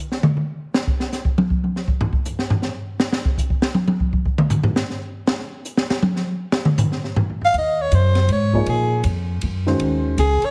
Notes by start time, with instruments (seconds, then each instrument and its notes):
0.12 snare
0.23 mid tom
0.37 mid tom
0.74 snare
0.87 kick
1.00 snare
1.12 snare, hi-hat pedal
1.25 kick
1.38 high tom
1.50 kick
1.64 high tom
1.76 snare
1.88 kick
2.01 floor tom
2.13 kick
2.25 floor tom, hi-hat pedal
2.39 snare
2.50 floor tom
2.62 snare
3.00 snare
3.12 snare
3.25 kick
3.38 kick, hi-hat pedal
3.50 kick
3.62 snare
3.74 high tom
3.88 high tom
4.00 kick
4.13 kick
4.25 kick
4.38 mid tom
4.50 floor tom, hi-hat pedal
4.63 floor tom
4.76 snare
4.90 snare
5.27 snare
5.39 snare
5.65 hi-hat pedal
5.77 snare
5.90 snare
6.02 high tom
6.16 snare
6.52 snare
6.65 mid tom
6.78 floor tom, hi-hat pedal
6.92 snare
7.04 snare
7.16 floor tom
7.30 floor tom
7.41 soprano saxophone F5, floor tom
7.53 upright bass D#2, ride
7.58 soprano saxophone D#5
7.81 soprano saxophone C#5
7.92 upright bass F#2, soprano saxophone C5, hi-hat pedal, ride
8.15 snare, ride
8.28 upright bass G#2, ride
8.32 soprano saxophone C#5
8.53 grand piano F3 A#3 D#4 G#4 C#5, kick
8.66 soprano saxophone G#4, ride
9.04 upright bass F2, hi-hat pedal, ride
9.41 upright bass F#2, ride
9.66 grand piano D#3 G#3 C#4 F#4 C5, snare
9.79 upright bass D#2, ride
10.17 upright bass C#2, soprano saxophone G#4, hi-hat pedal, ride
10.42 soprano saxophone C#5, ride